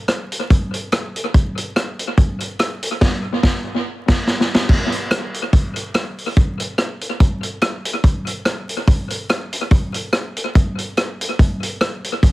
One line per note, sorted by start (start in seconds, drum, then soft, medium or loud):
0.08 cross-stick loud
0.08 closed hi-hat medium
0.32 closed hi-hat medium
0.50 kick loud
0.50 closed hi-hat medium
0.74 closed hi-hat medium
0.92 cross-stick loud
0.92 closed hi-hat medium
1.16 closed hi-hat medium
1.34 kick loud
1.34 closed hi-hat medium
1.57 closed hi-hat medium
1.76 cross-stick loud
1.76 closed hi-hat medium
1.99 closed hi-hat medium
2.17 kick loud
2.17 closed hi-hat medium
2.40 closed hi-hat medium
2.59 cross-stick loud
2.59 closed hi-hat medium
2.83 closed hi-hat loud
3.01 kick loud
3.01 snare loud
3.01 crash medium
3.43 kick loud
3.43 snare loud
4.08 kick loud
4.08 snare loud
4.08 crash medium
4.27 snare medium
4.41 snare medium
4.55 snare loud
4.69 kick loud
4.69 crash medium
4.92 closed hi-hat medium
5.11 cross-stick loud
5.11 closed hi-hat medium
5.34 closed hi-hat medium
5.53 kick loud
5.53 closed hi-hat medium
5.76 closed hi-hat medium
5.94 cross-stick loud
5.94 closed hi-hat medium
6.18 open hi-hat medium
6.36 kick loud
6.36 closed hi-hat medium
6.60 closed hi-hat medium
6.78 cross-stick loud
6.78 closed hi-hat medium
7.01 closed hi-hat medium
7.20 kick loud
7.20 closed hi-hat medium
7.43 closed hi-hat medium
7.61 cross-stick loud
7.61 closed hi-hat medium
7.85 closed hi-hat loud
8.04 kick loud
8.04 closed hi-hat medium
8.27 closed hi-hat medium
8.45 cross-stick loud
8.45 closed hi-hat medium
8.69 closed hi-hat medium
8.87 kick loud
8.87 closed hi-hat medium
9.10 closed hi-hat medium
9.29 cross-stick loud
9.29 closed hi-hat medium
9.53 closed hi-hat loud
9.71 kick loud
9.71 closed hi-hat medium
9.94 closed hi-hat medium
10.13 cross-stick loud
10.13 closed hi-hat medium
10.36 closed hi-hat medium
10.55 kick loud
10.55 closed hi-hat medium
10.78 closed hi-hat medium
10.97 cross-stick loud
10.97 closed hi-hat medium
11.21 closed hi-hat loud
11.39 kick loud
11.39 closed hi-hat medium
11.63 closed hi-hat medium
11.81 cross-stick loud
11.81 closed hi-hat medium
12.04 closed hi-hat medium
12.23 kick loud
12.23 closed hi-hat medium